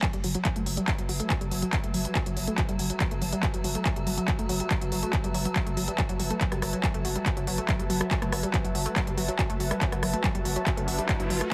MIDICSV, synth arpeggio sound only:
0, 0, Header, 1, 2, 480
1, 0, Start_track
1, 0, Key_signature, 3, "minor"
1, 0, Tempo, 425532
1, 1470, Time_signature, 4, 2, 24, 8
1, 13014, End_track
2, 0, Start_track
2, 0, Title_t, "Synth arpeggio sound"
2, 0, Program_c, 0, 84
2, 32, Note_on_c, 0, 54, 81
2, 99, Note_off_c, 0, 54, 0
2, 153, Note_on_c, 0, 55, 77
2, 192, Note_off_c, 0, 55, 0
2, 271, Note_on_c, 0, 54, 74
2, 339, Note_off_c, 0, 54, 0
2, 393, Note_on_c, 0, 54, 77
2, 459, Note_off_c, 0, 54, 0
2, 511, Note_on_c, 0, 54, 84
2, 551, Note_off_c, 0, 54, 0
2, 633, Note_on_c, 0, 57, 75
2, 699, Note_off_c, 0, 57, 0
2, 749, Note_on_c, 0, 54, 77
2, 818, Note_off_c, 0, 54, 0
2, 872, Note_on_c, 0, 55, 78
2, 912, Note_off_c, 0, 55, 0
2, 988, Note_on_c, 0, 54, 86
2, 1058, Note_off_c, 0, 54, 0
2, 1111, Note_on_c, 0, 54, 79
2, 1177, Note_off_c, 0, 54, 0
2, 1229, Note_on_c, 0, 54, 73
2, 1271, Note_off_c, 0, 54, 0
2, 1351, Note_on_c, 0, 57, 77
2, 1418, Note_off_c, 0, 57, 0
2, 1469, Note_on_c, 0, 54, 85
2, 1538, Note_off_c, 0, 54, 0
2, 1591, Note_on_c, 0, 55, 78
2, 1631, Note_off_c, 0, 55, 0
2, 1708, Note_on_c, 0, 54, 77
2, 1778, Note_off_c, 0, 54, 0
2, 1832, Note_on_c, 0, 54, 77
2, 1898, Note_off_c, 0, 54, 0
2, 1949, Note_on_c, 0, 54, 83
2, 1991, Note_off_c, 0, 54, 0
2, 2072, Note_on_c, 0, 57, 76
2, 2138, Note_off_c, 0, 57, 0
2, 2190, Note_on_c, 0, 54, 77
2, 2258, Note_off_c, 0, 54, 0
2, 2313, Note_on_c, 0, 55, 75
2, 2352, Note_off_c, 0, 55, 0
2, 2431, Note_on_c, 0, 54, 86
2, 2499, Note_off_c, 0, 54, 0
2, 2553, Note_on_c, 0, 54, 77
2, 2619, Note_off_c, 0, 54, 0
2, 2671, Note_on_c, 0, 54, 75
2, 2712, Note_off_c, 0, 54, 0
2, 2794, Note_on_c, 0, 57, 76
2, 2859, Note_off_c, 0, 57, 0
2, 2911, Note_on_c, 0, 54, 87
2, 2979, Note_off_c, 0, 54, 0
2, 3033, Note_on_c, 0, 55, 82
2, 3072, Note_off_c, 0, 55, 0
2, 3151, Note_on_c, 0, 54, 76
2, 3219, Note_off_c, 0, 54, 0
2, 3273, Note_on_c, 0, 54, 76
2, 3339, Note_off_c, 0, 54, 0
2, 3391, Note_on_c, 0, 54, 84
2, 3432, Note_off_c, 0, 54, 0
2, 3512, Note_on_c, 0, 57, 76
2, 3578, Note_off_c, 0, 57, 0
2, 3630, Note_on_c, 0, 54, 76
2, 3698, Note_off_c, 0, 54, 0
2, 3753, Note_on_c, 0, 55, 77
2, 3792, Note_off_c, 0, 55, 0
2, 3871, Note_on_c, 0, 54, 84
2, 3939, Note_off_c, 0, 54, 0
2, 3993, Note_on_c, 0, 54, 80
2, 4059, Note_off_c, 0, 54, 0
2, 4109, Note_on_c, 0, 54, 79
2, 4151, Note_off_c, 0, 54, 0
2, 4232, Note_on_c, 0, 57, 77
2, 4298, Note_off_c, 0, 57, 0
2, 4348, Note_on_c, 0, 54, 88
2, 4418, Note_off_c, 0, 54, 0
2, 4470, Note_on_c, 0, 55, 77
2, 4511, Note_off_c, 0, 55, 0
2, 4589, Note_on_c, 0, 54, 78
2, 4658, Note_off_c, 0, 54, 0
2, 4710, Note_on_c, 0, 54, 76
2, 4777, Note_off_c, 0, 54, 0
2, 4828, Note_on_c, 0, 54, 82
2, 4870, Note_off_c, 0, 54, 0
2, 4951, Note_on_c, 0, 57, 83
2, 5017, Note_off_c, 0, 57, 0
2, 5068, Note_on_c, 0, 54, 76
2, 5137, Note_off_c, 0, 54, 0
2, 5191, Note_on_c, 0, 55, 76
2, 5231, Note_off_c, 0, 55, 0
2, 5308, Note_on_c, 0, 54, 84
2, 5378, Note_off_c, 0, 54, 0
2, 5432, Note_on_c, 0, 54, 76
2, 5498, Note_off_c, 0, 54, 0
2, 5551, Note_on_c, 0, 54, 74
2, 5592, Note_off_c, 0, 54, 0
2, 5673, Note_on_c, 0, 57, 74
2, 5738, Note_off_c, 0, 57, 0
2, 5790, Note_on_c, 0, 54, 82
2, 5859, Note_off_c, 0, 54, 0
2, 5912, Note_on_c, 0, 55, 77
2, 5952, Note_off_c, 0, 55, 0
2, 6029, Note_on_c, 0, 54, 78
2, 6098, Note_off_c, 0, 54, 0
2, 6151, Note_on_c, 0, 54, 73
2, 6218, Note_off_c, 0, 54, 0
2, 6269, Note_on_c, 0, 54, 88
2, 6311, Note_off_c, 0, 54, 0
2, 6391, Note_on_c, 0, 57, 75
2, 6458, Note_off_c, 0, 57, 0
2, 6509, Note_on_c, 0, 54, 78
2, 6578, Note_off_c, 0, 54, 0
2, 6632, Note_on_c, 0, 55, 77
2, 6671, Note_off_c, 0, 55, 0
2, 6749, Note_on_c, 0, 54, 88
2, 6818, Note_off_c, 0, 54, 0
2, 6872, Note_on_c, 0, 54, 80
2, 6938, Note_off_c, 0, 54, 0
2, 6991, Note_on_c, 0, 54, 74
2, 7031, Note_off_c, 0, 54, 0
2, 7112, Note_on_c, 0, 57, 76
2, 7178, Note_off_c, 0, 57, 0
2, 7229, Note_on_c, 0, 54, 82
2, 7298, Note_off_c, 0, 54, 0
2, 7352, Note_on_c, 0, 55, 76
2, 7392, Note_off_c, 0, 55, 0
2, 7470, Note_on_c, 0, 54, 74
2, 7538, Note_off_c, 0, 54, 0
2, 7591, Note_on_c, 0, 54, 77
2, 7657, Note_off_c, 0, 54, 0
2, 7709, Note_on_c, 0, 54, 79
2, 7750, Note_off_c, 0, 54, 0
2, 7831, Note_on_c, 0, 57, 74
2, 7897, Note_off_c, 0, 57, 0
2, 7949, Note_on_c, 0, 54, 77
2, 8018, Note_off_c, 0, 54, 0
2, 8073, Note_on_c, 0, 55, 74
2, 8112, Note_off_c, 0, 55, 0
2, 8189, Note_on_c, 0, 54, 87
2, 8258, Note_off_c, 0, 54, 0
2, 8311, Note_on_c, 0, 54, 73
2, 8378, Note_off_c, 0, 54, 0
2, 8430, Note_on_c, 0, 54, 78
2, 8471, Note_off_c, 0, 54, 0
2, 8552, Note_on_c, 0, 57, 77
2, 8618, Note_off_c, 0, 57, 0
2, 8669, Note_on_c, 0, 54, 84
2, 8738, Note_off_c, 0, 54, 0
2, 8790, Note_on_c, 0, 55, 80
2, 8831, Note_off_c, 0, 55, 0
2, 8909, Note_on_c, 0, 54, 73
2, 8978, Note_off_c, 0, 54, 0
2, 9030, Note_on_c, 0, 54, 79
2, 9097, Note_off_c, 0, 54, 0
2, 9149, Note_on_c, 0, 54, 87
2, 9190, Note_off_c, 0, 54, 0
2, 9272, Note_on_c, 0, 57, 78
2, 9338, Note_off_c, 0, 57, 0
2, 9390, Note_on_c, 0, 54, 77
2, 9459, Note_off_c, 0, 54, 0
2, 9512, Note_on_c, 0, 55, 79
2, 9551, Note_off_c, 0, 55, 0
2, 9628, Note_on_c, 0, 54, 80
2, 9698, Note_off_c, 0, 54, 0
2, 9751, Note_on_c, 0, 54, 76
2, 9817, Note_off_c, 0, 54, 0
2, 9869, Note_on_c, 0, 54, 77
2, 9910, Note_off_c, 0, 54, 0
2, 9991, Note_on_c, 0, 57, 76
2, 10058, Note_off_c, 0, 57, 0
2, 10108, Note_on_c, 0, 54, 90
2, 10177, Note_off_c, 0, 54, 0
2, 10232, Note_on_c, 0, 55, 77
2, 10272, Note_off_c, 0, 55, 0
2, 10349, Note_on_c, 0, 54, 79
2, 10418, Note_off_c, 0, 54, 0
2, 10472, Note_on_c, 0, 54, 80
2, 10538, Note_off_c, 0, 54, 0
2, 10590, Note_on_c, 0, 54, 85
2, 10631, Note_off_c, 0, 54, 0
2, 10712, Note_on_c, 0, 57, 82
2, 10778, Note_off_c, 0, 57, 0
2, 10830, Note_on_c, 0, 54, 74
2, 10898, Note_off_c, 0, 54, 0
2, 10952, Note_on_c, 0, 55, 79
2, 10992, Note_off_c, 0, 55, 0
2, 11070, Note_on_c, 0, 54, 83
2, 11139, Note_off_c, 0, 54, 0
2, 11192, Note_on_c, 0, 54, 78
2, 11258, Note_off_c, 0, 54, 0
2, 11310, Note_on_c, 0, 54, 74
2, 11351, Note_off_c, 0, 54, 0
2, 11432, Note_on_c, 0, 57, 77
2, 11498, Note_off_c, 0, 57, 0
2, 11551, Note_on_c, 0, 54, 82
2, 11619, Note_off_c, 0, 54, 0
2, 11673, Note_on_c, 0, 55, 78
2, 11712, Note_off_c, 0, 55, 0
2, 11790, Note_on_c, 0, 54, 76
2, 11858, Note_off_c, 0, 54, 0
2, 11912, Note_on_c, 0, 54, 76
2, 11978, Note_off_c, 0, 54, 0
2, 12030, Note_on_c, 0, 54, 86
2, 12071, Note_off_c, 0, 54, 0
2, 12152, Note_on_c, 0, 57, 77
2, 12218, Note_off_c, 0, 57, 0
2, 12269, Note_on_c, 0, 54, 77
2, 12338, Note_off_c, 0, 54, 0
2, 12391, Note_on_c, 0, 55, 77
2, 12431, Note_off_c, 0, 55, 0
2, 12509, Note_on_c, 0, 54, 85
2, 12578, Note_off_c, 0, 54, 0
2, 12630, Note_on_c, 0, 54, 80
2, 12697, Note_off_c, 0, 54, 0
2, 12748, Note_on_c, 0, 54, 73
2, 12790, Note_off_c, 0, 54, 0
2, 12871, Note_on_c, 0, 57, 79
2, 12937, Note_off_c, 0, 57, 0
2, 13014, End_track
0, 0, End_of_file